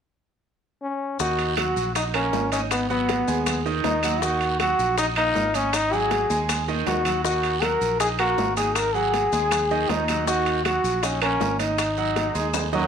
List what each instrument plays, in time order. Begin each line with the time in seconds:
0.83 trombone C#4
1.19 fingered electric bass D#2, grand piano D#3 D#4 D#5, trombone F#4, high bongo, high conga, long guiro, maracas
1.39 high bongo, high conga, high timbale, maracas
1.57 grand piano F#3 F#4 F#5, trombone F#4, high bongo, high conga, high timbale, low timbale, short guiro, claves, maracas
1.76 fingered electric bass A#1, high bongo, high conga, short guiro, maracas
1.95 grand piano D#4 D#5 D#6, trombone D#4, high bongo, high conga, high timbale, long guiro, maracas
2.14 grand piano A#3 A#4 A#5, trombone C#4, high bongo, high conga, high timbale, claves, maracas
2.33 fingered electric bass G#1, high bongo, low bongo, high conga, low timbale, short guiro, maracas
2.52 trombone C#4, grand piano D#4 D#5 D#6, high conga, high timbale, short guiro, maracas
2.71 trombone B3, high bongo, high conga, high timbale, long guiro, claves, maracas
2.90 grand piano F#3 F#4 F#5, trombone B3, high bongo, high conga, maracas
3.09 high bongo, high conga, high timbale, low timbale, short guiro, maracas
3.28 fingered electric bass D#2, grand piano G#3 G#4 G#5, high bongo, high conga, short guiro, maracas
3.46 high bongo, high conga, low conga, high timbale, long guiro, claves, maracas
3.66 grand piano D#3 D#4 D#5, high bongo, high conga, maracas
3.84 fingered electric bass D#2, trombone D#4, high bongo, low bongo, high conga, high timbale, low timbale, short guiro, maracas
4.03 grand piano F#3 F#4 F#5, high conga, high timbale, short guiro, claves, maracas
4.22 grand piano D#3 D#4 D#5, trombone F#4, high bongo, long guiro, maracas
4.41 high bongo, high conga, high timbale, maracas
4.60 grand piano F#3 F#4 F#5, trombone F#4, high bongo, high conga, high timbale, low timbale, short guiro, claves, maracas
4.79 fingered electric bass A#1, high bongo, high conga, short guiro, maracas
4.98 grand piano D#4 D#5 D#6, trombone D#4, high bongo, high conga, high timbale, long guiro, maracas
5.16 grand piano A#3 A#4 A#5, trombone D#4, high bongo, high conga, high timbale, claves, maracas
5.35 fingered electric bass G#1, high bongo, low bongo, high conga, low timbale, short guiro, maracas
5.54 trombone C#4, grand piano D#4 D#5 D#6, high conga, high timbale, short guiro, maracas
5.73 trombone D#4, high bongo, high timbale, long guiro, claves, maracas
5.92 grand piano F#3 F#4 F#5, trombone G#4, high bongo, high conga, maracas
6.11 high bongo, high conga, high timbale, low timbale, short guiro, maracas
6.30 fingered electric bass D#2, grand piano G#3 G#4 G#5, high bongo, high conga, short guiro, maracas
6.49 high bongo, high conga, high timbale, long guiro, claves, maracas
6.68 grand piano D#3 D#4 D#5, high bongo, high conga, maracas
6.86 fingered electric bass D#2, trombone F#4, high bongo, low bongo, low conga, high timbale, low timbale, short guiro, maracas
7.05 grand piano F#3 F#4 F#5, low conga, high timbale, short guiro, claves, maracas
7.24 grand piano D#3 D#4 D#5, trombone F#4, high bongo, high conga, long guiro, maracas
7.43 high bongo, high conga, high timbale, maracas
7.62 grand piano F#3 F#4 F#5, trombone A#4, high bongo, high conga, high timbale, low timbale, short guiro, claves, maracas
7.81 fingered electric bass A#1, high bongo, high conga, short guiro, maracas
8.00 grand piano D#4 D#5 D#6, trombone G#4, high bongo, high conga, high timbale, long guiro, maracas
8.19 grand piano A#3 A#4 A#5, trombone F#4, high bongo, high conga, high timbale, claves, maracas
8.38 fingered electric bass G#1, high bongo, low bongo, high conga, low timbale, short guiro, maracas
8.57 grand piano D#4 D#5 D#6, trombone G#4, high conga, high timbale, short guiro, maracas
8.75 trombone A#4, high bongo, high conga, high timbale, long guiro, claves, maracas
8.94 grand piano F#3 F#4 F#5, trombone G#4, high bongo, high conga, maracas
9.14 high bongo, high conga, high timbale, low timbale, short guiro, maracas
9.32 fingered electric bass D#2, grand piano G#3 G#4 G#5, high bongo, high conga, short guiro, maracas
9.51 high bongo, high conga, low conga, high timbale, long guiro, claves, maracas
9.71 grand piano D#3 D#4 D#5, high bongo, high conga, low conga, maracas
9.89 fingered electric bass D#2, trombone D#4, high bongo, low bongo, high conga, high timbale, low timbale, short guiro, maracas
10.08 grand piano F#3 F#4 F#5, high conga, high timbale, short guiro, claves, maracas
10.27 grand piano D#3 D#4 D#5, trombone F#4, high bongo, high conga, long guiro, maracas
10.46 high bongo, high conga, high timbale, maracas
10.65 grand piano F#3 F#4 F#5, trombone F#4, high bongo, high conga, high timbale, low timbale, short guiro, claves, maracas
10.84 fingered electric bass A#1, high bongo, high conga, short guiro, maracas
11.03 trombone C#4, grand piano D#4 D#5 D#6, high bongo, high conga, high timbale, long guiro, maracas
11.22 grand piano A#3 A#4 A#5, trombone C#4, high bongo, high conga, high timbale, claves, maracas
11.40 fingered electric bass G#1, high bongo, low bongo, high conga, low timbale, short guiro, maracas
11.59 grand piano D#4 D#5 D#6, trombone D#4, high conga, high timbale, short guiro, maracas
11.78 high bongo, high timbale, long guiro, claves, maracas
11.97 grand piano F#3 F#4 F#5, high bongo, high conga, maracas
12.16 high bongo, high conga, high timbale, low timbale, short guiro, maracas
12.35 fingered electric bass D#2, grand piano G#3 G#4 G#5, high bongo, high conga, short guiro, maracas
12.54 high bongo, high conga, low conga, high timbale, long guiro, claves, maracas
12.73 trombone section F#2 F#3, grand piano D#3 D#4 D#5, high bongo, maracas
12.79 high timbale